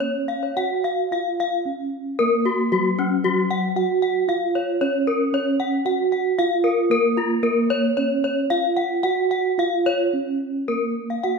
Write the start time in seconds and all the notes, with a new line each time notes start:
0.00 C#4 C#5
0.28 F5
0.43 C#5
0.56 F#4 F#5
0.84 F5
1.11 F4 F5
1.40 F5
1.65 C#4
2.19 A#3 A#4
2.45 F#4
2.72 F#3 F#4
2.99 C#4
3.24 F#3 F#4
3.51 F#5
3.76 F#4 F#5
4.02 F#5
4.28 F4 F5
4.55 C#5
4.81 C#4 C#5
5.07 A#4
5.33 C#4 C#5
5.60 F#5
5.85 F#4 F#5
6.12 F#5
6.38 F4 F5
6.64 A#4
6.90 A#3 A#4
7.17 F4
7.43 A#3 A#4
7.70 C#5
7.97 C#4 C#5
8.24 C#5
8.50 F4 F5
8.77 F#5
9.03 F#4 F#5
9.31 F#5
9.58 F4 F5
9.86 C#5
10.13 C#4
10.68 A#3 A#4
11.10 F5
11.23 F#4 F#5